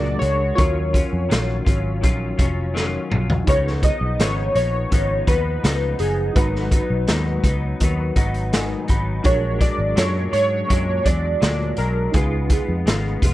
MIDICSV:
0, 0, Header, 1, 6, 480
1, 0, Start_track
1, 0, Tempo, 722892
1, 388, Time_signature, 4, 2, 24, 8
1, 8856, End_track
2, 0, Start_track
2, 0, Title_t, "Synth keys"
2, 0, Program_c, 0, 88
2, 0, Note_on_c, 0, 74, 98
2, 110, Note_off_c, 0, 74, 0
2, 126, Note_on_c, 0, 73, 89
2, 359, Note_off_c, 0, 73, 0
2, 367, Note_on_c, 0, 73, 81
2, 2031, Note_off_c, 0, 73, 0
2, 2316, Note_on_c, 0, 73, 91
2, 2549, Note_on_c, 0, 75, 94
2, 2558, Note_off_c, 0, 73, 0
2, 2793, Note_on_c, 0, 73, 91
2, 2795, Note_off_c, 0, 75, 0
2, 3018, Note_off_c, 0, 73, 0
2, 3026, Note_on_c, 0, 73, 99
2, 3505, Note_on_c, 0, 71, 93
2, 3521, Note_off_c, 0, 73, 0
2, 3959, Note_off_c, 0, 71, 0
2, 3983, Note_on_c, 0, 68, 79
2, 4207, Note_off_c, 0, 68, 0
2, 4222, Note_on_c, 0, 71, 75
2, 5876, Note_off_c, 0, 71, 0
2, 6145, Note_on_c, 0, 73, 92
2, 6368, Note_off_c, 0, 73, 0
2, 6381, Note_on_c, 0, 74, 92
2, 6625, Note_on_c, 0, 73, 94
2, 6630, Note_off_c, 0, 74, 0
2, 6850, Note_off_c, 0, 73, 0
2, 6858, Note_on_c, 0, 73, 100
2, 7341, Note_on_c, 0, 74, 101
2, 7355, Note_off_c, 0, 73, 0
2, 7822, Note_on_c, 0, 70, 83
2, 7836, Note_off_c, 0, 74, 0
2, 8046, Note_off_c, 0, 70, 0
2, 8062, Note_on_c, 0, 68, 72
2, 8856, Note_off_c, 0, 68, 0
2, 8856, End_track
3, 0, Start_track
3, 0, Title_t, "Reed electric piano"
3, 0, Program_c, 1, 4
3, 0, Control_c, 1, 64, 127
3, 0, Note_on_c, 1, 62, 45
3, 0, Note_on_c, 1, 66, 42
3, 0, Note_on_c, 1, 68, 42
3, 0, Note_on_c, 1, 70, 54
3, 369, Note_on_c, 1, 65, 59
3, 370, Note_off_c, 1, 66, 0
3, 378, Note_on_c, 1, 66, 56
3, 380, Note_off_c, 1, 62, 0
3, 382, Note_off_c, 1, 70, 0
3, 385, Note_off_c, 1, 68, 0
3, 390, Note_on_c, 1, 70, 53
3, 397, Control_c, 1, 64, 0
3, 400, Note_on_c, 1, 73, 68
3, 511, Control_c, 1, 64, 127
3, 2271, Note_off_c, 1, 65, 0
3, 2276, Note_off_c, 1, 66, 0
3, 2282, Note_off_c, 1, 70, 0
3, 2287, Note_off_c, 1, 73, 0
3, 2287, Note_on_c, 1, 63, 58
3, 2301, Note_on_c, 1, 65, 54
3, 2314, Control_c, 1, 64, 0
3, 2314, Note_on_c, 1, 68, 55
3, 2323, Note_on_c, 1, 71, 69
3, 2412, Control_c, 1, 64, 127
3, 4189, Note_off_c, 1, 63, 0
3, 4196, Note_off_c, 1, 65, 0
3, 4203, Note_off_c, 1, 68, 0
3, 4206, Note_on_c, 1, 63, 56
3, 4207, Note_off_c, 1, 71, 0
3, 4217, Note_on_c, 1, 66, 54
3, 4228, Note_on_c, 1, 82, 56
3, 4236, Control_c, 1, 64, 0
3, 4238, Note_on_c, 1, 71, 65
3, 4362, Control_c, 1, 64, 127
3, 5427, Note_on_c, 1, 78, 69
3, 5649, Note_off_c, 1, 78, 0
3, 5669, Note_on_c, 1, 80, 66
3, 5890, Note_off_c, 1, 80, 0
3, 5910, Note_on_c, 1, 83, 73
3, 6108, Note_off_c, 1, 63, 0
3, 6113, Note_off_c, 1, 66, 0
3, 6119, Note_off_c, 1, 82, 0
3, 6124, Note_off_c, 1, 71, 0
3, 6131, Note_off_c, 1, 83, 0
3, 6134, Note_on_c, 1, 62, 60
3, 6144, Note_on_c, 1, 66, 57
3, 6151, Note_on_c, 1, 68, 55
3, 6153, Control_c, 1, 64, 0
3, 6164, Note_on_c, 1, 70, 68
3, 6263, Control_c, 1, 64, 127
3, 8032, Note_off_c, 1, 62, 0
3, 8036, Note_off_c, 1, 66, 0
3, 8040, Note_off_c, 1, 68, 0
3, 8047, Note_off_c, 1, 70, 0
3, 8047, Note_on_c, 1, 63, 65
3, 8057, Note_on_c, 1, 65, 54
3, 8064, Note_on_c, 1, 68, 56
3, 8071, Control_c, 1, 64, 0
3, 8078, Note_on_c, 1, 71, 64
3, 8188, Control_c, 1, 64, 127
3, 8856, Note_off_c, 1, 63, 0
3, 8856, Note_off_c, 1, 65, 0
3, 8856, Note_off_c, 1, 68, 0
3, 8856, Note_off_c, 1, 71, 0
3, 8856, End_track
4, 0, Start_track
4, 0, Title_t, "Clean electric guitar"
4, 0, Program_c, 2, 27
4, 0, Note_on_c, 2, 46, 84
4, 0, Note_on_c, 2, 54, 78
4, 0, Note_on_c, 2, 56, 86
4, 0, Note_on_c, 2, 62, 87
4, 0, Note_on_c, 2, 66, 85
4, 126, Note_off_c, 2, 66, 0
4, 134, Note_on_c, 2, 66, 50
4, 136, Note_off_c, 2, 62, 0
4, 140, Note_off_c, 2, 46, 0
4, 144, Note_off_c, 2, 54, 0
4, 144, Note_on_c, 2, 62, 46
4, 146, Note_off_c, 2, 56, 0
4, 158, Note_on_c, 2, 56, 43
4, 377, Note_off_c, 2, 56, 0
4, 377, Note_on_c, 2, 51, 78
4, 379, Note_on_c, 2, 54, 87
4, 381, Note_off_c, 2, 66, 0
4, 382, Note_off_c, 2, 62, 0
4, 384, Note_on_c, 2, 61, 77
4, 390, Note_on_c, 2, 65, 79
4, 609, Note_off_c, 2, 65, 0
4, 617, Note_on_c, 2, 65, 54
4, 622, Note_off_c, 2, 51, 0
4, 623, Note_off_c, 2, 54, 0
4, 623, Note_off_c, 2, 61, 0
4, 631, Note_on_c, 2, 61, 50
4, 641, Note_on_c, 2, 54, 42
4, 855, Note_off_c, 2, 54, 0
4, 856, Note_on_c, 2, 51, 74
4, 857, Note_off_c, 2, 61, 0
4, 862, Note_off_c, 2, 65, 0
4, 862, Note_on_c, 2, 54, 82
4, 865, Note_on_c, 2, 61, 74
4, 873, Note_on_c, 2, 65, 88
4, 1087, Note_off_c, 2, 65, 0
4, 1095, Note_on_c, 2, 65, 57
4, 1101, Note_off_c, 2, 61, 0
4, 1102, Note_off_c, 2, 51, 0
4, 1105, Note_off_c, 2, 54, 0
4, 1108, Note_on_c, 2, 61, 53
4, 1118, Note_on_c, 2, 54, 42
4, 1336, Note_on_c, 2, 51, 60
4, 1337, Note_off_c, 2, 54, 0
4, 1341, Note_off_c, 2, 65, 0
4, 1343, Note_off_c, 2, 61, 0
4, 1345, Note_on_c, 2, 54, 68
4, 1351, Note_on_c, 2, 61, 64
4, 1357, Note_on_c, 2, 65, 72
4, 1569, Note_off_c, 2, 65, 0
4, 1577, Note_on_c, 2, 65, 59
4, 1582, Note_off_c, 2, 51, 0
4, 1584, Note_off_c, 2, 61, 0
4, 1586, Note_off_c, 2, 54, 0
4, 1592, Note_on_c, 2, 61, 55
4, 1599, Note_on_c, 2, 54, 48
4, 1816, Note_off_c, 2, 54, 0
4, 1819, Note_on_c, 2, 51, 89
4, 1822, Note_off_c, 2, 65, 0
4, 1824, Note_off_c, 2, 61, 0
4, 1824, Note_on_c, 2, 54, 87
4, 1832, Note_on_c, 2, 61, 85
4, 1833, Note_on_c, 2, 65, 89
4, 2052, Note_off_c, 2, 65, 0
4, 2060, Note_on_c, 2, 65, 54
4, 2063, Note_off_c, 2, 51, 0
4, 2063, Note_off_c, 2, 61, 0
4, 2066, Note_off_c, 2, 54, 0
4, 2071, Note_on_c, 2, 61, 53
4, 2080, Note_on_c, 2, 54, 46
4, 2303, Note_off_c, 2, 65, 0
4, 2305, Note_on_c, 2, 49, 73
4, 2308, Note_off_c, 2, 54, 0
4, 2309, Note_off_c, 2, 61, 0
4, 2311, Note_on_c, 2, 53, 80
4, 2317, Note_on_c, 2, 59, 83
4, 2321, Note_on_c, 2, 63, 83
4, 2540, Note_off_c, 2, 63, 0
4, 2546, Note_off_c, 2, 49, 0
4, 2548, Note_on_c, 2, 63, 52
4, 2549, Note_off_c, 2, 53, 0
4, 2552, Note_off_c, 2, 59, 0
4, 2562, Note_on_c, 2, 59, 43
4, 2570, Note_on_c, 2, 53, 40
4, 2780, Note_off_c, 2, 53, 0
4, 2784, Note_on_c, 2, 49, 71
4, 2785, Note_off_c, 2, 59, 0
4, 2788, Note_off_c, 2, 63, 0
4, 2788, Note_on_c, 2, 53, 75
4, 2793, Note_on_c, 2, 59, 84
4, 2798, Note_on_c, 2, 63, 82
4, 3010, Note_off_c, 2, 63, 0
4, 3018, Note_on_c, 2, 63, 48
4, 3025, Note_off_c, 2, 49, 0
4, 3025, Note_off_c, 2, 59, 0
4, 3027, Note_off_c, 2, 53, 0
4, 3033, Note_on_c, 2, 59, 45
4, 3042, Note_on_c, 2, 53, 38
4, 3255, Note_on_c, 2, 49, 58
4, 3258, Note_off_c, 2, 53, 0
4, 3262, Note_off_c, 2, 63, 0
4, 3265, Note_off_c, 2, 59, 0
4, 3266, Note_on_c, 2, 53, 58
4, 3273, Note_on_c, 2, 59, 61
4, 3278, Note_on_c, 2, 63, 63
4, 3494, Note_off_c, 2, 63, 0
4, 3501, Note_off_c, 2, 49, 0
4, 3502, Note_on_c, 2, 63, 54
4, 3505, Note_off_c, 2, 59, 0
4, 3506, Note_off_c, 2, 53, 0
4, 3513, Note_on_c, 2, 59, 51
4, 3522, Note_on_c, 2, 53, 42
4, 3738, Note_off_c, 2, 53, 0
4, 3740, Note_on_c, 2, 49, 71
4, 3741, Note_off_c, 2, 59, 0
4, 3744, Note_off_c, 2, 63, 0
4, 3746, Note_on_c, 2, 53, 85
4, 3749, Note_on_c, 2, 59, 77
4, 3754, Note_on_c, 2, 63, 81
4, 3969, Note_off_c, 2, 63, 0
4, 3977, Note_on_c, 2, 63, 52
4, 3982, Note_off_c, 2, 59, 0
4, 3983, Note_off_c, 2, 49, 0
4, 3986, Note_off_c, 2, 53, 0
4, 3990, Note_on_c, 2, 59, 47
4, 3999, Note_on_c, 2, 53, 39
4, 4217, Note_on_c, 2, 44, 81
4, 4221, Note_off_c, 2, 63, 0
4, 4222, Note_off_c, 2, 59, 0
4, 4224, Note_off_c, 2, 53, 0
4, 4224, Note_on_c, 2, 51, 74
4, 4226, Note_on_c, 2, 54, 84
4, 4230, Note_on_c, 2, 59, 85
4, 4233, Note_on_c, 2, 63, 86
4, 4453, Note_off_c, 2, 63, 0
4, 4460, Note_on_c, 2, 63, 58
4, 4461, Note_off_c, 2, 44, 0
4, 4464, Note_off_c, 2, 59, 0
4, 4465, Note_off_c, 2, 51, 0
4, 4466, Note_off_c, 2, 54, 0
4, 4472, Note_on_c, 2, 59, 48
4, 4481, Note_on_c, 2, 54, 44
4, 4696, Note_on_c, 2, 44, 83
4, 4697, Note_off_c, 2, 59, 0
4, 4699, Note_off_c, 2, 54, 0
4, 4701, Note_on_c, 2, 51, 73
4, 4703, Note_off_c, 2, 63, 0
4, 4705, Note_on_c, 2, 59, 89
4, 4707, Note_on_c, 2, 54, 80
4, 4711, Note_on_c, 2, 63, 80
4, 4930, Note_off_c, 2, 63, 0
4, 4938, Note_on_c, 2, 63, 59
4, 4939, Note_off_c, 2, 59, 0
4, 4941, Note_off_c, 2, 44, 0
4, 4943, Note_off_c, 2, 51, 0
4, 4946, Note_off_c, 2, 54, 0
4, 4947, Note_on_c, 2, 59, 52
4, 4958, Note_on_c, 2, 54, 44
4, 5181, Note_off_c, 2, 63, 0
4, 5183, Note_off_c, 2, 54, 0
4, 5183, Note_on_c, 2, 51, 64
4, 5186, Note_off_c, 2, 59, 0
4, 5191, Note_on_c, 2, 54, 72
4, 5198, Note_on_c, 2, 59, 71
4, 5206, Note_on_c, 2, 63, 69
4, 5409, Note_off_c, 2, 63, 0
4, 5417, Note_on_c, 2, 63, 65
4, 5422, Note_off_c, 2, 59, 0
4, 5424, Note_off_c, 2, 51, 0
4, 5428, Note_off_c, 2, 54, 0
4, 5430, Note_on_c, 2, 59, 56
4, 5440, Note_on_c, 2, 54, 52
4, 5661, Note_off_c, 2, 54, 0
4, 5661, Note_off_c, 2, 59, 0
4, 5661, Note_off_c, 2, 63, 0
4, 5661, Note_on_c, 2, 44, 84
4, 5665, Note_on_c, 2, 51, 84
4, 5669, Note_on_c, 2, 54, 80
4, 5669, Note_on_c, 2, 59, 98
4, 5674, Note_on_c, 2, 63, 100
4, 5886, Note_off_c, 2, 63, 0
4, 5894, Note_on_c, 2, 63, 56
4, 5895, Note_off_c, 2, 59, 0
4, 5903, Note_off_c, 2, 44, 0
4, 5903, Note_on_c, 2, 59, 55
4, 5905, Note_off_c, 2, 51, 0
4, 5907, Note_off_c, 2, 54, 0
4, 5914, Note_on_c, 2, 54, 46
4, 6127, Note_off_c, 2, 54, 0
4, 6129, Note_on_c, 2, 46, 83
4, 6135, Note_on_c, 2, 54, 73
4, 6138, Note_off_c, 2, 59, 0
4, 6139, Note_off_c, 2, 63, 0
4, 6140, Note_on_c, 2, 56, 85
4, 6145, Note_on_c, 2, 62, 90
4, 6357, Note_off_c, 2, 62, 0
4, 6365, Note_on_c, 2, 62, 55
4, 6369, Note_off_c, 2, 56, 0
4, 6376, Note_off_c, 2, 46, 0
4, 6377, Note_off_c, 2, 54, 0
4, 6377, Note_on_c, 2, 56, 53
4, 6385, Note_on_c, 2, 54, 47
4, 6606, Note_off_c, 2, 54, 0
4, 6610, Note_on_c, 2, 46, 73
4, 6611, Note_off_c, 2, 56, 0
4, 6614, Note_off_c, 2, 62, 0
4, 6614, Note_on_c, 2, 54, 81
4, 6619, Note_on_c, 2, 56, 82
4, 6622, Note_on_c, 2, 62, 84
4, 6840, Note_off_c, 2, 62, 0
4, 6848, Note_on_c, 2, 62, 54
4, 6854, Note_off_c, 2, 56, 0
4, 6857, Note_off_c, 2, 46, 0
4, 6859, Note_off_c, 2, 54, 0
4, 6862, Note_on_c, 2, 56, 41
4, 6869, Note_on_c, 2, 54, 43
4, 7090, Note_off_c, 2, 54, 0
4, 7090, Note_on_c, 2, 46, 64
4, 7096, Note_off_c, 2, 56, 0
4, 7096, Note_off_c, 2, 62, 0
4, 7098, Note_on_c, 2, 54, 59
4, 7104, Note_on_c, 2, 56, 67
4, 7111, Note_on_c, 2, 62, 65
4, 7326, Note_off_c, 2, 62, 0
4, 7334, Note_on_c, 2, 62, 53
4, 7336, Note_off_c, 2, 46, 0
4, 7340, Note_off_c, 2, 56, 0
4, 7341, Note_off_c, 2, 54, 0
4, 7348, Note_on_c, 2, 56, 49
4, 7356, Note_on_c, 2, 54, 42
4, 7574, Note_off_c, 2, 54, 0
4, 7575, Note_on_c, 2, 46, 80
4, 7578, Note_off_c, 2, 56, 0
4, 7579, Note_off_c, 2, 62, 0
4, 7582, Note_on_c, 2, 54, 80
4, 7586, Note_on_c, 2, 56, 81
4, 7590, Note_on_c, 2, 62, 78
4, 7808, Note_off_c, 2, 62, 0
4, 7816, Note_on_c, 2, 62, 49
4, 7817, Note_off_c, 2, 56, 0
4, 7819, Note_off_c, 2, 46, 0
4, 7822, Note_off_c, 2, 54, 0
4, 7825, Note_on_c, 2, 56, 48
4, 7835, Note_on_c, 2, 54, 46
4, 8059, Note_off_c, 2, 56, 0
4, 8060, Note_off_c, 2, 62, 0
4, 8063, Note_on_c, 2, 49, 78
4, 8064, Note_off_c, 2, 54, 0
4, 8067, Note_on_c, 2, 56, 80
4, 8073, Note_on_c, 2, 59, 77
4, 8076, Note_on_c, 2, 65, 93
4, 8294, Note_off_c, 2, 65, 0
4, 8302, Note_on_c, 2, 65, 51
4, 8303, Note_off_c, 2, 49, 0
4, 8304, Note_off_c, 2, 59, 0
4, 8305, Note_off_c, 2, 56, 0
4, 8312, Note_on_c, 2, 59, 49
4, 8321, Note_on_c, 2, 56, 40
4, 8538, Note_off_c, 2, 56, 0
4, 8539, Note_on_c, 2, 49, 79
4, 8542, Note_off_c, 2, 65, 0
4, 8544, Note_off_c, 2, 59, 0
4, 8546, Note_on_c, 2, 56, 84
4, 8552, Note_on_c, 2, 59, 89
4, 8555, Note_on_c, 2, 65, 88
4, 8772, Note_off_c, 2, 65, 0
4, 8780, Note_on_c, 2, 65, 60
4, 8781, Note_off_c, 2, 49, 0
4, 8784, Note_off_c, 2, 56, 0
4, 8787, Note_off_c, 2, 59, 0
4, 8795, Note_on_c, 2, 59, 55
4, 8802, Note_on_c, 2, 56, 49
4, 8856, Note_off_c, 2, 56, 0
4, 8856, Note_off_c, 2, 59, 0
4, 8856, Note_off_c, 2, 65, 0
4, 8856, End_track
5, 0, Start_track
5, 0, Title_t, "Picked electric bass"
5, 0, Program_c, 3, 34
5, 0, Note_on_c, 3, 37, 86
5, 100, Note_off_c, 3, 37, 0
5, 144, Note_on_c, 3, 37, 86
5, 338, Note_off_c, 3, 37, 0
5, 385, Note_on_c, 3, 39, 102
5, 674, Note_off_c, 3, 39, 0
5, 749, Note_on_c, 3, 41, 94
5, 845, Note_off_c, 3, 41, 0
5, 873, Note_on_c, 3, 34, 92
5, 1063, Note_off_c, 3, 34, 0
5, 1108, Note_on_c, 3, 32, 93
5, 1352, Note_off_c, 3, 32, 0
5, 1352, Note_on_c, 3, 34, 82
5, 1542, Note_off_c, 3, 34, 0
5, 1587, Note_on_c, 3, 29, 78
5, 1971, Note_off_c, 3, 29, 0
5, 2072, Note_on_c, 3, 35, 77
5, 2262, Note_off_c, 3, 35, 0
5, 2306, Note_on_c, 3, 37, 97
5, 2594, Note_off_c, 3, 37, 0
5, 2663, Note_on_c, 3, 35, 78
5, 2761, Note_off_c, 3, 35, 0
5, 2783, Note_on_c, 3, 32, 83
5, 2977, Note_off_c, 3, 32, 0
5, 3024, Note_on_c, 3, 34, 91
5, 3217, Note_off_c, 3, 34, 0
5, 3267, Note_on_c, 3, 32, 80
5, 3459, Note_off_c, 3, 32, 0
5, 3503, Note_on_c, 3, 39, 86
5, 3696, Note_off_c, 3, 39, 0
5, 3744, Note_on_c, 3, 37, 92
5, 3937, Note_off_c, 3, 37, 0
5, 3982, Note_on_c, 3, 30, 84
5, 4176, Note_off_c, 3, 30, 0
5, 4224, Note_on_c, 3, 32, 101
5, 4513, Note_off_c, 3, 32, 0
5, 4583, Note_on_c, 3, 35, 87
5, 4680, Note_off_c, 3, 35, 0
5, 4707, Note_on_c, 3, 39, 88
5, 4898, Note_off_c, 3, 39, 0
5, 4938, Note_on_c, 3, 37, 93
5, 5133, Note_off_c, 3, 37, 0
5, 5184, Note_on_c, 3, 39, 88
5, 5376, Note_off_c, 3, 39, 0
5, 5419, Note_on_c, 3, 32, 91
5, 5805, Note_off_c, 3, 32, 0
5, 5908, Note_on_c, 3, 32, 83
5, 6099, Note_off_c, 3, 32, 0
5, 6140, Note_on_c, 3, 34, 99
5, 6429, Note_off_c, 3, 34, 0
5, 6498, Note_on_c, 3, 32, 78
5, 6596, Note_off_c, 3, 32, 0
5, 6619, Note_on_c, 3, 42, 89
5, 6813, Note_off_c, 3, 42, 0
5, 6859, Note_on_c, 3, 44, 86
5, 7053, Note_off_c, 3, 44, 0
5, 7107, Note_on_c, 3, 42, 88
5, 7297, Note_off_c, 3, 42, 0
5, 7341, Note_on_c, 3, 40, 91
5, 7534, Note_off_c, 3, 40, 0
5, 7582, Note_on_c, 3, 38, 91
5, 7775, Note_off_c, 3, 38, 0
5, 7822, Note_on_c, 3, 35, 95
5, 8015, Note_off_c, 3, 35, 0
5, 8061, Note_on_c, 3, 37, 107
5, 8350, Note_off_c, 3, 37, 0
5, 8423, Note_on_c, 3, 41, 83
5, 8519, Note_off_c, 3, 41, 0
5, 8542, Note_on_c, 3, 32, 86
5, 8734, Note_off_c, 3, 32, 0
5, 8782, Note_on_c, 3, 29, 89
5, 8856, Note_off_c, 3, 29, 0
5, 8856, End_track
6, 0, Start_track
6, 0, Title_t, "Drums"
6, 144, Note_on_c, 9, 42, 75
6, 210, Note_off_c, 9, 42, 0
6, 387, Note_on_c, 9, 36, 109
6, 387, Note_on_c, 9, 42, 72
6, 453, Note_off_c, 9, 42, 0
6, 454, Note_off_c, 9, 36, 0
6, 625, Note_on_c, 9, 36, 89
6, 632, Note_on_c, 9, 42, 68
6, 691, Note_off_c, 9, 36, 0
6, 699, Note_off_c, 9, 42, 0
6, 872, Note_on_c, 9, 42, 92
6, 878, Note_on_c, 9, 38, 109
6, 938, Note_off_c, 9, 42, 0
6, 944, Note_off_c, 9, 38, 0
6, 1105, Note_on_c, 9, 36, 91
6, 1112, Note_on_c, 9, 42, 83
6, 1172, Note_off_c, 9, 36, 0
6, 1178, Note_off_c, 9, 42, 0
6, 1351, Note_on_c, 9, 42, 78
6, 1352, Note_on_c, 9, 36, 84
6, 1417, Note_off_c, 9, 42, 0
6, 1418, Note_off_c, 9, 36, 0
6, 1585, Note_on_c, 9, 36, 82
6, 1587, Note_on_c, 9, 42, 73
6, 1652, Note_off_c, 9, 36, 0
6, 1653, Note_off_c, 9, 42, 0
6, 1834, Note_on_c, 9, 38, 50
6, 1900, Note_off_c, 9, 38, 0
6, 2068, Note_on_c, 9, 45, 79
6, 2135, Note_off_c, 9, 45, 0
6, 2189, Note_on_c, 9, 43, 83
6, 2256, Note_off_c, 9, 43, 0
6, 2306, Note_on_c, 9, 36, 103
6, 2306, Note_on_c, 9, 42, 71
6, 2372, Note_off_c, 9, 42, 0
6, 2373, Note_off_c, 9, 36, 0
6, 2440, Note_on_c, 9, 38, 31
6, 2506, Note_off_c, 9, 38, 0
6, 2542, Note_on_c, 9, 36, 86
6, 2543, Note_on_c, 9, 42, 66
6, 2608, Note_off_c, 9, 36, 0
6, 2609, Note_off_c, 9, 42, 0
6, 2787, Note_on_c, 9, 42, 94
6, 2793, Note_on_c, 9, 38, 104
6, 2853, Note_off_c, 9, 42, 0
6, 2859, Note_off_c, 9, 38, 0
6, 3024, Note_on_c, 9, 42, 80
6, 3091, Note_off_c, 9, 42, 0
6, 3265, Note_on_c, 9, 42, 78
6, 3267, Note_on_c, 9, 36, 79
6, 3332, Note_off_c, 9, 42, 0
6, 3334, Note_off_c, 9, 36, 0
6, 3502, Note_on_c, 9, 36, 86
6, 3503, Note_on_c, 9, 42, 73
6, 3568, Note_off_c, 9, 36, 0
6, 3570, Note_off_c, 9, 42, 0
6, 3745, Note_on_c, 9, 42, 80
6, 3750, Note_on_c, 9, 38, 98
6, 3812, Note_off_c, 9, 42, 0
6, 3816, Note_off_c, 9, 38, 0
6, 3977, Note_on_c, 9, 42, 75
6, 4043, Note_off_c, 9, 42, 0
6, 4221, Note_on_c, 9, 42, 70
6, 4222, Note_on_c, 9, 36, 110
6, 4288, Note_off_c, 9, 36, 0
6, 4288, Note_off_c, 9, 42, 0
6, 4354, Note_on_c, 9, 38, 32
6, 4421, Note_off_c, 9, 38, 0
6, 4458, Note_on_c, 9, 36, 88
6, 4460, Note_on_c, 9, 42, 64
6, 4525, Note_off_c, 9, 36, 0
6, 4526, Note_off_c, 9, 42, 0
6, 4698, Note_on_c, 9, 42, 96
6, 4704, Note_on_c, 9, 38, 115
6, 4765, Note_off_c, 9, 42, 0
6, 4771, Note_off_c, 9, 38, 0
6, 4938, Note_on_c, 9, 36, 84
6, 4940, Note_on_c, 9, 42, 84
6, 5004, Note_off_c, 9, 36, 0
6, 5006, Note_off_c, 9, 42, 0
6, 5181, Note_on_c, 9, 42, 87
6, 5185, Note_on_c, 9, 36, 80
6, 5248, Note_off_c, 9, 42, 0
6, 5251, Note_off_c, 9, 36, 0
6, 5418, Note_on_c, 9, 42, 78
6, 5419, Note_on_c, 9, 36, 85
6, 5485, Note_off_c, 9, 42, 0
6, 5486, Note_off_c, 9, 36, 0
6, 5540, Note_on_c, 9, 42, 43
6, 5606, Note_off_c, 9, 42, 0
6, 5663, Note_on_c, 9, 42, 79
6, 5668, Note_on_c, 9, 38, 106
6, 5730, Note_off_c, 9, 42, 0
6, 5734, Note_off_c, 9, 38, 0
6, 5897, Note_on_c, 9, 42, 74
6, 5905, Note_on_c, 9, 36, 83
6, 5964, Note_off_c, 9, 42, 0
6, 5971, Note_off_c, 9, 36, 0
6, 6137, Note_on_c, 9, 42, 69
6, 6141, Note_on_c, 9, 36, 109
6, 6203, Note_off_c, 9, 42, 0
6, 6207, Note_off_c, 9, 36, 0
6, 6379, Note_on_c, 9, 36, 86
6, 6380, Note_on_c, 9, 42, 63
6, 6445, Note_off_c, 9, 36, 0
6, 6446, Note_off_c, 9, 42, 0
6, 6620, Note_on_c, 9, 42, 97
6, 6626, Note_on_c, 9, 38, 115
6, 6686, Note_off_c, 9, 42, 0
6, 6692, Note_off_c, 9, 38, 0
6, 6860, Note_on_c, 9, 42, 83
6, 6927, Note_off_c, 9, 42, 0
6, 7104, Note_on_c, 9, 42, 81
6, 7106, Note_on_c, 9, 36, 84
6, 7171, Note_off_c, 9, 42, 0
6, 7173, Note_off_c, 9, 36, 0
6, 7341, Note_on_c, 9, 36, 87
6, 7341, Note_on_c, 9, 42, 74
6, 7407, Note_off_c, 9, 36, 0
6, 7407, Note_off_c, 9, 42, 0
6, 7583, Note_on_c, 9, 42, 79
6, 7587, Note_on_c, 9, 38, 103
6, 7649, Note_off_c, 9, 42, 0
6, 7654, Note_off_c, 9, 38, 0
6, 7813, Note_on_c, 9, 42, 77
6, 7880, Note_off_c, 9, 42, 0
6, 8058, Note_on_c, 9, 42, 73
6, 8062, Note_on_c, 9, 36, 108
6, 8125, Note_off_c, 9, 42, 0
6, 8128, Note_off_c, 9, 36, 0
6, 8298, Note_on_c, 9, 42, 66
6, 8299, Note_on_c, 9, 36, 84
6, 8364, Note_off_c, 9, 42, 0
6, 8365, Note_off_c, 9, 36, 0
6, 8545, Note_on_c, 9, 42, 95
6, 8551, Note_on_c, 9, 38, 110
6, 8612, Note_off_c, 9, 42, 0
6, 8618, Note_off_c, 9, 38, 0
6, 8779, Note_on_c, 9, 36, 91
6, 8782, Note_on_c, 9, 42, 84
6, 8846, Note_off_c, 9, 36, 0
6, 8849, Note_off_c, 9, 42, 0
6, 8856, End_track
0, 0, End_of_file